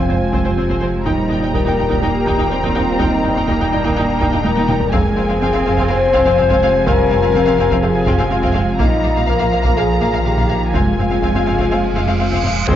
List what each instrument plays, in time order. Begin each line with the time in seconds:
Already playing: sub bass F1, trombone section C3 F3, ambient pad F3 C4 F4 C5, french horn section C4, violin section G#5
0.08 double bass section F2, cello section G#3, viola section C4, violin section C5
0.33 double bass section F2, viola section C4, violin section C5, taiko
0.45 double bass section F2, viola section C4, violin section C5
0.57 double bass section F2, cello section G#3, viola section C4, violin section C5
0.69 double bass section F2, viola section C4, violin section C5, taiko
0.82 double bass section F2, viola section C4, violin section C5
1.05 sub bass D#1, double bass section D#2, trombone section A#2 G3, cello section G3, ambient pad G3 A#3 A#4 G5, viola section D#4, french horn section D#4, violin section G5 A#5, taiko
1.29 double bass section D#2, viola section D#4, violin section G5
1.41 double bass section D#2, viola section D#4, violin section G5
1.54 double bass section D#2, cello section G3, viola section D#4, french horn section A#4, violin section G5, taiko
1.66 double bass section D#2, viola section D#4, violin section G5
1.78 double bass section D#2, viola section D#4, violin section G5
1.89 double bass section D#2, viola section D#4, violin section G5, taiko
2.02 double bass section D#2, cello section A#3, viola section D#4, french horn section G4, violin section G5
2.26 double bass section D#2, viola section D#4, violin section G5, taiko
2.39 double bass section D#2, viola section D#4, violin section G5
2.50 double bass section D#2, cello section C4, viola section D#4, violin section G5
2.63 double bass section D#2, viola section D#4, violin section G5, taiko
2.75 double bass section D#2, viola section D#4, french horn section F4, violin section G5
2.99 double bass section D#2, viola section D#4, french horn section D#4, violin section G5, taiko
3.24 double bass section D#2, viola section D#4, violin section G5
3.36 double bass section D#2, viola section D#4, violin section G5
3.48 double bass section D#2, cello section A#3, viola section D#4, violin section G5, taiko
3.60 double bass section D#2, viola section D#4, violin section G5
3.71 double bass section D#2, french horn section D4, viola section D#4, violin section G5
3.84 double bass section D#2, viola section D#4, violin section G5, taiko
3.96 double bass section D#2, viola section D#4, violin section G5
4.20 double bass section D#2, viola section D#4, violin section G5, taiko
4.33 double bass section D#2, viola section D#4, violin section G5
4.44 double bass section D#2, cello section G3, viola section D#4, french horn section A#4, violin section G5, taiko high
4.56 double bass section D#2, viola section D#4, violin section G5, taiko high
4.68 double bass section D#2, viola section D#4, violin section G5, taiko mid
4.81 taiko low
4.92 sub bass F1, double bass section F2, trombone section C3 F3, ambient pad F3 C4 F4 F5, cello section G#3, viola section C4, french horn section G#4, violin section F5 G#5, taiko
5.17 double bass section F2, viola section C4, violin section F5
5.29 double bass section F2, viola section C4, violin section F5
5.41 double bass section F2, cello section C4, viola section C4, violin section F5, taiko
5.53 double bass section F2, viola section C4, violin section F5
5.66 double bass section F2, viola section C4, violin section F5
5.77 double bass section F2, viola section C4, violin section F5, taiko
5.89 double bass section F2, viola section C4, french horn section C5, violin section F5
6.13 double bass section F2, viola section C4, violin section F5, taiko
6.25 double bass section F2, viola section C4, violin section F5
6.37 double bass section F2, cello section G#3, viola section C4, violin section F5
6.49 double bass section F2, viola section C4, violin section F5, taiko
6.62 double bass section F2, viola section C4, violin section F5
6.85 double bass section F2, cello section G3, viola section C4, french horn section A#4, violin section F5, taiko
7.10 double bass section F2, viola section C4, violin section F5
7.22 double bass section F2, viola section C4, violin section F5
7.34 double bass section F2, cello section F3, viola section C4, violin section F5, taiko
7.46 double bass section F2, viola section C4, violin section F5
7.58 double bass section F2, viola section C4, violin section F5
7.71 double bass section F2, viola section C4, violin section F5, taiko
7.83 double bass section F2, viola section C4, french horn section G#4, violin section F5
8.07 double bass section F2, viola section C4, violin section F5, taiko
8.19 double bass section F2, viola section C4, violin section F5
8.31 double bass section F2, cello section G#3, viola section C4, french horn section F4, violin section F5
8.42 double bass section F2, viola section C4, violin section F5, taiko
8.54 double bass section F2, viola section C4, violin section F5
8.79 sub bass A#1, double bass section A#1, trombone section A#2 F3, cello section G3, viola section A#3, ambient pad A#3, french horn section D#4, violin section F5 A#5, taiko
9.04 double bass section A#1, viola section A#3, violin section F5
9.15 double bass section A#1, viola section A#3, violin section F5
9.27 double bass section A#1, cello section F3, viola section A#3, french horn section A#4, violin section F5, taiko
9.40 double bass section A#1, viola section A#3, violin section F5
9.53 double bass section A#1, viola section A#3, violin section F5
9.64 double bass section A#1, viola section A#3, violin section F5, taiko
9.77 double bass section A#1, viola section A#3, french horn section G#4, violin section F5
10.01 double bass section A#1, viola section A#3, violin section F5, taiko
10.13 double bass section A#1, viola section A#3, violin section F5
10.25 double bass section A#1, cello section D#3, viola section A#3, french horn section G4, violin section F5
10.37 double bass section A#1, viola section A#3, violin section F5, taiko
10.49 double bass section A#1, viola section A#3, violin section F5
10.73 sub bass F1, double bass section F1, trombone section C3 G#3, ambient pad F3 G#3 F4 F5, cello section G#3, viola section C4, french horn section F4, violin section F5 G#5, taiko, reverse cymbal
10.86 taiko low-mid
10.98 double bass section F1, viola section C4, violin section F5, taiko low-mid
11.10 double bass section F1, viola section C4, violin section F5
11.22 double bass section F1, viola section C4, violin section F5, taiko
11.34 double bass section F1, viola section C4, violin section F5, taiko low-mid
11.46 double bass section F1, viola section C4, violin section F5, taiko low-mid
11.58 double bass section F1, viola section C4, violin section F5, taiko
11.71 double bass section F1, viola section C4, violin section F5
11.95 double bass section F1, viola section C4, violin section F5, taiko
12.07 double bass section F1, viola section C4, violin section F5
12.19 double bass section F1, viola section C4, violin section F5
12.31 double bass section F1, viola section C4, violin section F5, taiko
12.43 double bass section F1, viola section C4, violin section F5, taiko low-mid
12.56 taiko low-mid
12.67 sub bass F1, trombone section F2 F3, double bass section F2, cello section C3, ambient pad F3 C4 F4 F5, viola section G#3 C4, french horn section C4 F4, violin section F4 G#4 C5, taiko, impact